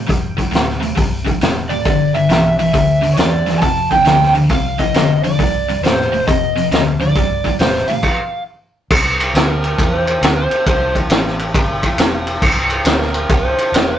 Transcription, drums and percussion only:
0.09 kick loud
0.09 open hi-hat medium
0.38 kick medium
0.38 open hi-hat soft
0.53 snare loud
0.53 open hi-hat medium
0.69 snare soft
0.82 open hi-hat medium
0.97 kick loud
0.97 open hi-hat medium
1.26 kick medium
1.26 open hi-hat soft
1.41 snare loud
1.41 open hi-hat medium
1.70 open hi-hat soft
1.85 kick loud
1.85 open hi-hat medium
2.14 open hi-hat soft
2.30 snare loud
2.30 open hi-hat medium
2.59 open hi-hat soft
2.74 kick loud
2.74 open hi-hat medium
3.03 open hi-hat soft
3.17 snare loud
3.17 open hi-hat medium
3.47 snare soft
3.47 open hi-hat soft
3.62 kick medium
3.62 open hi-hat medium
3.90 kick medium
3.90 open hi-hat soft
4.05 snare medium
4.05 open hi-hat medium
4.22 snare soft
4.35 open hi-hat soft
4.49 kick loud
4.49 open hi-hat medium
4.79 kick medium
4.79 open hi-hat soft
4.94 snare loud
4.94 open hi-hat medium
5.24 open hi-hat medium
5.39 kick medium
5.39 open hi-hat medium
5.69 open hi-hat soft
5.84 snare medium
5.84 open hi-hat medium
6.01 snare soft
6.14 open hi-hat soft
6.28 kick loud
6.28 open hi-hat medium
6.57 open hi-hat soft
6.72 snare loud
6.72 open hi-hat medium
7.01 open hi-hat soft
7.15 kick loud
7.15 open hi-hat medium
7.44 kick medium
7.44 open hi-hat soft
7.59 snare loud
7.59 open hi-hat medium
7.74 snare soft
7.88 open hi-hat soft
8.03 kick medium
8.03 crash medium
8.90 kick loud
8.90 crash loud
9.20 ride medium
9.35 snare loud
9.35 ride medium
9.64 ride medium
9.79 kick loud
9.79 ride medium
10.07 ride medium
10.23 snare loud
10.23 ride loud
10.51 ride medium
10.66 kick loud
10.66 ride medium
10.95 kick medium
10.95 ride medium
11.10 snare loud
11.10 ride medium
11.27 snare soft
11.39 ride medium
11.54 kick loud
11.54 ride medium
11.83 kick medium
11.83 ride medium
11.98 snare loud
11.98 ride loud
12.27 ride medium
12.42 kick loud
12.42 crash loud
12.70 ride medium
12.85 snare loud
12.85 ride loud
13.02 snare soft
13.14 ride medium
13.29 kick loud
13.29 ride medium
13.58 ride medium
13.74 snare loud
13.74 ride medium

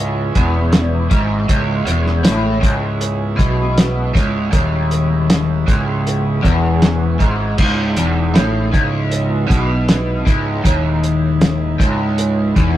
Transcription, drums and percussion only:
0.35 kick loud
0.35 closed hi-hat medium
0.73 snare loud
0.73 closed hi-hat medium
1.11 kick loud
1.11 closed hi-hat medium
1.49 kick loud
1.49 closed hi-hat medium
1.87 closed hi-hat medium
2.06 snare soft
2.25 snare loud
2.25 closed hi-hat loud
2.63 kick loud
2.63 closed hi-hat medium
3.01 closed hi-hat medium
3.39 kick loud
3.39 closed hi-hat medium
3.78 snare loud
3.78 closed hi-hat loud
4.15 kick loud
4.15 snare soft
4.15 closed hi-hat medium
4.53 kick loud
4.53 closed hi-hat medium
4.91 closed hi-hat medium
5.30 snare loud
5.30 closed hi-hat loud
5.68 kick loud
5.68 closed hi-hat medium
6.07 closed hi-hat medium
6.45 kick loud
6.45 closed hi-hat medium
6.82 snare loud
6.82 closed hi-hat medium
7.20 kick loud
7.20 closed hi-hat medium
7.58 kick loud
7.58 crash medium
7.96 closed hi-hat medium
8.35 snare loud
8.35 closed hi-hat loud
8.74 kick loud
8.74 closed hi-hat medium
9.11 closed hi-hat medium
9.50 kick loud
9.50 closed hi-hat medium
9.88 snare loud
9.88 closed hi-hat medium
10.27 kick loud
10.27 closed hi-hat medium
10.65 kick loud
10.65 closed hi-hat loud
11.03 closed hi-hat medium
11.41 snare loud
11.41 closed hi-hat loud
11.80 kick loud
11.80 closed hi-hat medium
12.18 closed hi-hat medium
12.56 kick loud
12.56 closed hi-hat medium

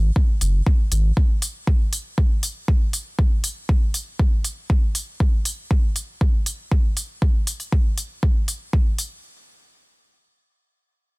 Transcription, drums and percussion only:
0.16 kick loud
0.41 open hi-hat medium
0.66 kick loud
0.92 open hi-hat medium
1.17 kick loud
1.42 open hi-hat medium
1.67 kick loud
1.93 open hi-hat medium
2.18 kick loud
2.43 open hi-hat medium
2.68 kick loud
2.93 open hi-hat medium
3.19 kick loud
3.44 open hi-hat medium
3.69 kick loud
3.94 open hi-hat medium
4.19 kick loud
4.44 open hi-hat medium
4.70 kick loud
4.95 open hi-hat medium
5.20 kick loud
5.45 open hi-hat medium
5.71 kick loud
5.96 open hi-hat medium
6.21 kick loud
6.46 open hi-hat medium
6.72 kick loud
6.97 open hi-hat medium
7.22 kick loud
7.47 open hi-hat medium
7.60 open hi-hat soft
7.72 kick medium
7.98 open hi-hat medium
8.23 kick loud
8.48 open hi-hat medium
8.73 kick medium
8.98 open hi-hat medium

